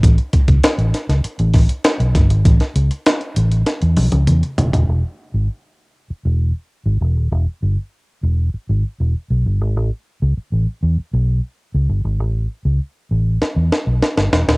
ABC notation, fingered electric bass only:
X:1
M:4/4
L:1/16
Q:1/4=98
K:A
V:1 name="Fingered electric bass" clef=bass
A,,, z2 C,, z A,,, z C,, z A,,,2 z2 B,,, =G,,, ^G,,, | A,,, z C,, z3 A,,,2 z E,, B,,, C,, E,, z E,,, ^D,,, | E,,, z2 G,,, z4 z E,,,2 z2 G,,, E,,, ^D,,, | E,,, z =G,,, z3 E,,,2 z ^G,,, z E,,, z B,,, =G,,, ^G,,, |
A,,, z2 C,, z A,,, z E,, z B,,,2 z2 C,, =G,,, ^G,,, | A,,,2 z C,, z2 A,,,2 z E,, z B,,, z =G,,, E,,, ^D,,, |]